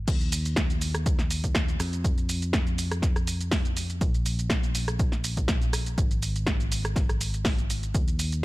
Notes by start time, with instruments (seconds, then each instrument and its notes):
0.08 fingered electric bass D#2, kick, closed hi-hat, crash, shaker
0.21 closed hi-hat, shaker
0.32 open hi-hat, shaker
0.45 closed hi-hat, shaker
0.56 kick, snare, closed hi-hat, shaker
0.70 closed hi-hat, shaker
0.81 open hi-hat, shaker
0.95 cross-stick, closed hi-hat, shaker
1.06 kick, closed hi-hat, shaker
1.19 snare, closed hi-hat, shaker
1.31 open hi-hat, shaker
1.44 kick, closed hi-hat, shaker
1.55 kick, snare, closed hi-hat, shaker
1.69 closed hi-hat, shaker
1.80 fingered electric bass F2, cross-stick, open hi-hat, shaker
1.93 closed hi-hat, shaker
2.04 kick, closed hi-hat, shaker
2.18 closed hi-hat, shaker
2.29 open hi-hat, shaker
2.42 closed hi-hat, shaker
2.53 kick, snare, closed hi-hat, shaker
2.67 closed hi-hat, shaker
2.78 open hi-hat, shaker
2.91 cross-stick, closed hi-hat, shaker
3.02 kick, snare, closed hi-hat, shaker
3.16 cross-stick, closed hi-hat, shaker
3.27 open hi-hat, shaker
3.41 closed hi-hat, shaker
3.51 kick, snare, open hi-hat, shaker
3.65 closed hi-hat, shaker
3.77 open hi-hat, shaker
3.90 closed hi-hat, shaker
4.01 fingered electric bass A#1, kick, closed hi-hat, shaker
4.14 closed hi-hat, shaker
4.26 open hi-hat, shaker
4.39 closed hi-hat, shaker
4.50 kick, snare, closed hi-hat, shaker
4.63 closed hi-hat, shaker
4.75 open hi-hat, shaker
4.88 cross-stick, closed hi-hat, shaker
4.99 kick, closed hi-hat, shaker
5.12 snare, closed hi-hat, shaker
5.24 open hi-hat, shaker
5.37 kick, closed hi-hat, shaker
5.48 kick, snare, closed hi-hat, shaker
5.62 closed hi-hat, shaker
5.73 cross-stick, open hi-hat, shaker
5.86 closed hi-hat, shaker
5.98 fingered electric bass G#1, kick, closed hi-hat, shaker
6.11 closed hi-hat, shaker
6.22 open hi-hat, shaker
6.36 closed hi-hat, shaker
6.47 kick, snare, closed hi-hat, shaker
6.60 closed hi-hat, shaker
6.72 open hi-hat, shaker
6.85 cross-stick, closed hi-hat, shaker
6.96 kick, snare, closed hi-hat, shaker
7.09 cross-stick, closed hi-hat, shaker
7.21 open hi-hat, shaker
7.34 closed hi-hat, shaker
7.45 kick, snare, open hi-hat, shaker
7.58 closed hi-hat, shaker
7.70 open hi-hat, shaker
7.83 closed hi-hat, shaker
7.94 fingered electric bass D#2, kick, closed hi-hat, shaker
8.08 closed hi-hat, shaker
8.19 open hi-hat, shaker
8.32 closed hi-hat, shaker